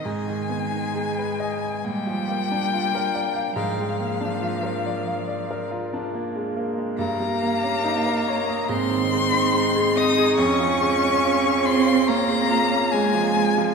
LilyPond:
<<
  \new Staff \with { instrumentName = "Violin" } { \time 4/4 \key bes \mixolydian \tempo 4 = 70 aes''2 g''2 | f''2~ f''8 r4. | \key des \lydian bes''2 c'''4. ees'''8 | des'''4. c'''8 bes''4 aes''4 | }
  \new Staff \with { instrumentName = "Grand piano" } { \time 4/4 \key bes \mixolydian aes,16 ees16 ces'16 ees'16 aes'16 ces''16 ees''16 aes''16 bes,16 f16 bes16 d'16 f'16 bes'16 d''16 f''16 | aes,16 aes16 bes16 d'16 f'16 bes'16 d''16 f''16 d''16 bes'16 f'16 d'16 bes16 aes16 bes16 aes16 | \key des \lydian g,16 g16 bes16 des'16 ees'16 bes'16 des''16 ees''16 aes,16 ees16 aes16 ees'16 aes16 aes'16 ees''16 aes'16 | f,16 f16 aes16 des'16 f'16 aes'16 des''16 f''16 des''16 aes'16 f'16 des'16 aes16 f16 aes16 f16 | }
  \new Staff \with { instrumentName = "Cello" } { \time 4/4 \key bes \mixolydian aes2 g2 | f2~ f8 r4. | \key des \lydian bes2 c'4. ees'8 | des'4. c'8 bes4 aes4 | }
>>